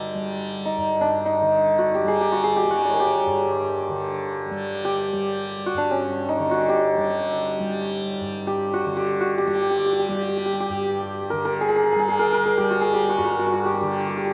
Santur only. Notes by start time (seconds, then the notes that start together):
Already playing: D#4 F#4 G#4
0.65 D#4
1.01 D4
1.26 D#4
1.78 F#4
1.95 G4
2.08 G#4
2.21 G4
2.32 F#4
2.44 G#4
2.56 G4
2.66 G#5 A#5
2.71 F#4 G5
2.78 D#5 F#5
2.85 D5
2.89 A#4 C#5
2.96 G#4
3.00 G4
4.85 G4
5.66 F#4
5.78 D4
5.91 C#4
6.29 D#4
6.51 F#4
6.69 G4
8.47 G4
8.74 F#4
8.97 G4
9.21 F#4
9.38 G4
9.48 G4
9.55 G4
9.62 G4
9.70 G4
9.79 G4
9.86 G4
9.93 G4
9.99 G4
10.09 G4
10.15 G4
10.22 G4
10.29 G4
10.38 G4
10.46 G4
10.53 G4
10.60 G4
11.30 A#4
11.45 A#4
11.61 G#4
11.69 G#4
11.76 G#4
11.84 G#4
11.92 G#4
11.99 G#4
12.08 G#4
12.19 A#4
12.33 A#4
12.45 G#4
12.57 G4
12.70 F#4
12.81 G#4
12.93 G4
13.09 F#4
13.18 F#4
13.24 F#4
13.31 F#4
13.39 F#4
13.47 F#4
13.53 F#4
13.65 G4
13.73 G4
13.81 G4
13.89 G4
13.95 G4
14.04 G4
14.09 G4
14.17 G4
14.25 G4